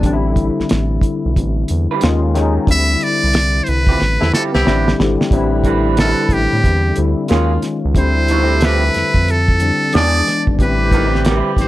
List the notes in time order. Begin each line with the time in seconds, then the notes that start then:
0.03 A1 D3 G3 C4 D4, kick, closed hi-hat
0.13 E4
0.36 kick, closed hi-hat
0.60 A1, snare
0.69 A1, snare, closed hi-hat
1.01 kick, closed hi-hat
1.25 B1
1.36 A1, kick, closed hi-hat
1.68 E2, closed hi-hat
1.91 G3 C4 E4 B4
2.01 D#2 D#3 G#3 C#4 F4, snare, closed hi-hat
2.34 D#3 G#3 C#4 D#4, snare, closed hi-hat
2.67 D2 D3 G3 C4 E4, kick, closed hi-hat
2.71 E5
3.01 D5, closed hi-hat
3.24 C2
3.33 snare, closed hi-hat
3.64 C5, closed hi-hat
3.68 C2 B4
3.87 F3 C4 E4 G4, kick
4.01 A1, snare
4.20 E2 C3 A3 E4, snare
4.34 F3 C4 E4 G4 A4, snare
4.53 C2 C3 B3 E4 G4, snare
4.65 A1 D3 G3 C4 E4 B4, snare
4.88 snare
4.98 G#1 D3 G3 C4 G4, snare
5.21 snare
5.31 A1 C3 D3 G3 C4 E4 B4, kick, closed hi-hat
5.64 G3 C4 E4 B4, kick, closed hi-hat
5.97 G3 C4 E4 A4 B4, snare, closed hi-hat
6.29 A1, kick, closed hi-hat
6.33 G4
6.53 A2
6.64 E2, kick, closed hi-hat
6.96 D2 D3 G3 C4 E4, closed hi-hat
7.28 D#2 C#3 D#3 F#3 G#3 A#3 C#4 F4 G#4, snare, closed hi-hat
7.62 snare, closed hi-hat
7.85 C#2
7.95 D2 C3 D3 G3 A3 C4 E4 C5, kick, closed hi-hat
8.28 E3 B3 D#4 F#4, closed hi-hat
8.43 F3 C4 E4 G4
8.61 F3 C4 E4 G4, snare, closed hi-hat
8.65 B4
8.94 F2, snare, closed hi-hat
9.14 F2, kick
9.28 A4, closed hi-hat
9.48 kick
9.60 D3 G3 C4 D4, closed hi-hat
9.93 E2 E3 G#3 B3 D4 G#4 D5, snare, closed hi-hat
10.27 snare, closed hi-hat
10.47 G#1, kick
10.59 A1 D3 E3 G3 C4 E4 G4 B4, kick, closed hi-hat
10.91 F#3 B3 D#4 A#4, kick, closed hi-hat
11.05 G3 C4 E4 B4
11.15 snare
11.25 G3 C4 E4 B4, snare, closed hi-hat
11.57 A1 C5, kick, snare, closed hi-hat